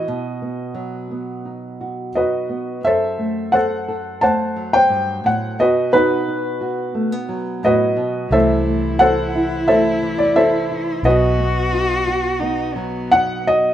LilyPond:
<<
  \new Staff \with { instrumentName = "Felt piano" } { \time 4/4 \key b \phrygian \tempo 4 = 88 << { dis''2. dis''4 | e''4 fis''4 a''8. g''8. fis''8 | dis''8 b'2~ b'8 dis''4 | e''4 fis''4 e''8. d''16 e''4 |
dis''2. fis''8 dis''8 | } \\ { fis'2. <fis' b'>4 | <a' c''>4 <a' c''>4 <c'' fis''>8. c''4~ c''16 | <fis' b'>8 <dis' fis'>2~ <dis' fis'>8 <fis' b'>4 | <a' c''>4 <a' c''>4 <a' c''>4 <a' c''>4 |
<fis' b'>2. r4 | } >> }
  \new Staff \with { instrumentName = "Cello" } { \time 4/4 \key b \phrygian r1 | r1 | r1 | e'1 |
fis'2 dis'8 b4 r8 | }
  \new Staff \with { instrumentName = "Nylon-string guitar" } { \time 4/4 \key b \phrygian << { r8 b4 b8 dis'8 fis'8 dis'8 b8 | r8 a4 a'8 a2 | r8 b8 dis'8 fis'8 a16 b4.~ b16 | <e a c' e'>8 a8 c'8 e'8 a4 c'8 e'8 |
r8 b8 dis'8 fis'8 b4 dis'8 fis'8 | } \\ { b,4 fis2. | fis,2~ fis,8 fis8 g,8 a,8 | b,2~ b,8 fis8 a,8 b,8 | c2~ c8 e4. |
b,2~ b,8 fis4. | } >> }
  \new Staff \with { instrumentName = "Fingered electric bass" } { \clef bass \time 4/4 \key b \phrygian r1 | r1 | r1 | c,1 |
b,,1 | }
>>